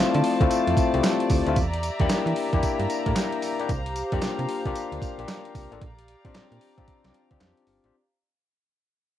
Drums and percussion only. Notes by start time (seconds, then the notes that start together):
0.14 closed hi-hat
0.24 open hi-hat
0.41 kick, closed hi-hat
0.51 closed hi-hat, tambourine
0.68 closed hi-hat
0.77 kick, closed hi-hat, tambourine
0.94 closed hi-hat
1.04 snare, clap, closed hi-hat, tambourine
1.20 closed hi-hat
1.30 kick, open hi-hat, tambourine
1.47 closed hi-hat
1.56 kick, closed hi-hat, tambourine
1.74 closed hi-hat
1.83 closed hi-hat, tambourine
2.00 kick, closed hi-hat
2.10 snare, clap, closed hi-hat, tambourine
2.27 closed hi-hat
2.36 open hi-hat
2.53 kick, closed hi-hat
2.63 kick, closed hi-hat, tambourine
2.80 closed hi-hat
2.90 closed hi-hat, tambourine
3.06 kick, closed hi-hat
3.16 snare, clap, closed hi-hat, tambourine
3.32 closed hi-hat
3.42 open hi-hat, tambourine
3.59 closed hi-hat
3.69 kick, closed hi-hat, tambourine
3.86 closed hi-hat
3.96 closed hi-hat, tambourine
4.12 kick, closed hi-hat
4.22 snare, clap, closed hi-hat, tambourine
4.39 closed hi-hat
4.49 open hi-hat
4.65 kick, closed hi-hat
4.75 closed hi-hat, tambourine
4.92 closed hi-hat
5.02 kick, closed hi-hat, tambourine
5.19 closed hi-hat
5.28 snare, clap, closed hi-hat, tambourine
5.45 closed hi-hat
5.55 kick, open hi-hat, tambourine
5.72 closed hi-hat
5.81 kick, closed hi-hat
5.99 closed hi-hat
6.08 closed hi-hat
6.25 kick, closed hi-hat
6.35 snare, clap, closed hi-hat
6.52 closed hi-hat
6.61 open hi-hat
6.78 kick, closed hi-hat
6.88 kick, closed hi-hat
7.04 snare, closed hi-hat
7.14 closed hi-hat
7.31 kick, closed hi-hat
7.41 snare, clap, closed hi-hat
7.57 closed hi-hat
7.67 open hi-hat
7.84 closed hi-hat